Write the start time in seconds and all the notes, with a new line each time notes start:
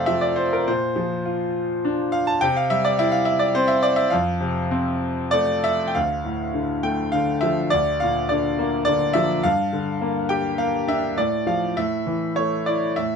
Already playing: F2 C3 A3 C5 D5 E5 F5
0.06 F3 E5
0.21 D5
0.36 C5
0.53 A#4
0.68 A#2 C5
0.96 F3
1.26 F4
1.85 D4
2.12 F5
2.27 A5
2.41 C3 G5
2.56 F5
2.70 G3 E5
2.85 D5
2.99 E4 E5
3.12 F5
3.25 E5
3.39 D5
3.55 C4 C5
3.68 E5
3.83 D5
3.96 E5
4.10 F2 F5
4.40 C3
4.71 C4
5.31 A3 D5
5.64 E5
5.88 G5
5.95 D2 F5
6.24 A2
6.54 D3
6.83 A3 G5
7.12 D3 F5
7.41 F3 E5
7.70 D2 D5
8.00 A#2 F5
8.29 D3 D5
8.59 A#3
8.85 D3 D5
9.13 F3 E5
9.43 G2 F5
9.73 D3
10.01 A#3
10.29 G4 G5
10.58 A#3 F5
10.88 D4 E5
11.16 A2 D5
11.47 F3 F5
11.77 A2 E5
12.07 E3
12.36 A3 C#5
12.66 E4 D5
12.96 A2 E5